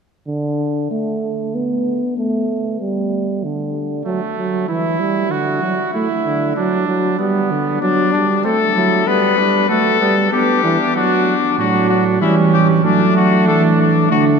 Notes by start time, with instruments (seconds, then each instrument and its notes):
0.28 euphonium D3
0.91 euphonium A3
1.55 euphonium B3
2.17 euphonium A3
2.81 euphonium G3
3.43 euphonium D3
4.06 euphonium F#3, trumpet A3
4.37 euphonium F#3
4.68 euphonium E3, trumpet E4
5.00 euphonium G3
5.31 euphonium D3, trumpet F#4
5.62 euphonium F#3
5.94 euphonium A3, trumpet E4
6.25 euphonium D3
6.56 euphonium F#3, trumpet D4
6.88 euphonium F#3
7.19 euphonium G3, trumpet B3
7.51 euphonium D3
7.82 euphonium F#3, trumpet D4
8.13 euphonium G3, trumpet D4
8.44 euphonium A3, trumpet C4 A4
8.75 euphonium F#3, trumpet E4
9.07 euphonium G3, trumpet B3 B4
9.38 euphonium G3, trumpet D4
9.69 euphonium A3, trumpet F#4 A4
10.01 euphonium G3, trumpet B3
10.32 euphonium B3, trumpet D4 G4
10.64 euphonium E3, trumpet D4
10.94 euphonium F#3, trumpet D4 F#4
11.58 tuba A2, euphonium F#3, trumpet D4 F#4
11.90 trumpet F#4
12.21 tuba E3, euphonium G3, trumpet C#4 E4
12.53 trumpet G4
12.84 tuba F#3, euphonium A3, trumpet D4
13.16 trumpet F#4
13.48 tuba E3, trumpet A4
13.80 trumpet D4
14.11 tuba D3, euphonium A3, trumpet D4 F#4